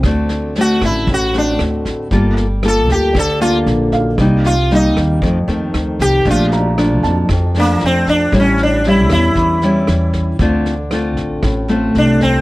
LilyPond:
<<
  \new Staff \with { instrumentName = "Grand piano" } { \time 4/4 \key d \minor \tempo 4 = 116 r1 | r2. r8 f''8~ | f''8 r2. r8 | r8 bes''4 a''4~ a''16 r4 r16 |
r1 | r1 | }
  \new Staff \with { instrumentName = "Sitar" } { \time 4/4 \key d \minor r4 fis'8 e'8 fis'8 d'8 r4 | r4 a'8 g'8 a'8 f'8 r4 | r8 f'8 ees'8 r2 g'8 | f'8 r2 bes8 c'8 d'8 |
cis'8 d'8 e'8 e'2~ e'8 | r2. d'8 c'8 | }
  \new Staff \with { instrumentName = "Nylon-string guitar" } { \time 4/4 \key d \minor << { <a c' fis'>4 <a c' fis'>4 r8 <a c' fis'>4. | <bes f' a'>8 r8 <bes f' a'>4 r8 <bes f' a'>4. | <g bes ees'>8 r8 <g bes ees'>4 <ees a c'>8 <ees a c'>4. | <f a d'>4 <f a d'>4 r8 <f a d'>4. |
<g cis' e'>4 <g cis' e'>4. <g cis' e'>4. | <a c' f'>8 r8 <a c' f'>4. <a c' f'>4. | } \\ { d2 a,2 | g2 d2 | c2 f,2 | bes,2 f,2 |
a,2 e2 | d2 a,2 | } >> }
  \new Staff \with { instrumentName = "Upright bass" } { \clef bass \time 4/4 \key d \minor d,4. a,,8 a,,4 d,4 | g,,4. d,8 d,4 bes,,4 | c,4. ees,8 f,8 ees,8 d,8 c,8 | bes,,4. f,8 f,4 f,4 |
a,,4. e,8 e,4 e,4 | d,4. a,,8 a,,4 c,4 | }
  \new DrumStaff \with { instrumentName = "Drums" } \drummode { \time 4/4 <bd ss sn>8 sn8 sn8 <bd ss sn>8 <bd sn>8 sn8 <ss sn>8 <bd sn>8 | <bd sn>8 sn8 <ss sn>8 <bd sn>8 <bd ss sn>8 sn8 sn8 <bd sn>8 | <bd ss sn>8 sn8 sn8 <bd ss sn>8 <bd sn>8 sn8 <ss sn>8 <bd sn>8 | <bd sn>8 sn8 <ss sn>8 <bd sn>8 <bd ss sn>8 sn8 sn8 <bd sn>8 |
<bd ss sn>8 sn8 sn8 <bd ss sn>8 <bd sn>8 sn8 <ss sn>8 <bd sn>8 | <bd sn>8 sn8 <ss sn>8 <bd sn>8 <bd ss sn>8 sn8 sn8 <bd sn>8 | }
>>